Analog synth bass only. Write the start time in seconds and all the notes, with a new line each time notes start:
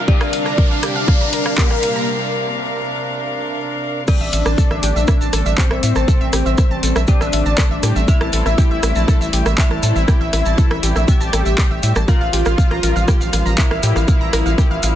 4.21 A1
4.33 A1
4.46 A1
4.71 A1
4.83 A1
4.96 A#1
5.21 A1
5.33 A1
5.46 A1
5.71 A1
5.83 A2
5.96 A1
6.21 A1
6.33 A1
6.46 A1
6.71 A1
6.83 A1
6.96 A#1
7.21 A1
7.33 A1
7.46 A1
7.71 A1
7.83 A2
7.96 A1
8.21 A1
8.33 A1
8.46 A1
8.71 A1
8.83 A1
8.96 A#1
9.21 A1
9.33 A1
9.46 A1
9.71 A1
9.83 A2
9.96 A1
10.21 A1
10.33 A1
10.46 A1
10.71 A1
10.83 A1
10.96 A#1
11.21 A1
11.33 A1
11.46 A1
11.71 A1
11.83 A2
11.96 A1
12.21 A1
12.33 A1
12.46 A1
12.71 A1
12.83 A1
12.96 A1
13.21 A1
13.33 A1
13.46 A1
13.71 A1
13.83 A2
13.96 A1
14.21 A1
14.33 A1
14.46 A1
14.71 A1
14.83 A1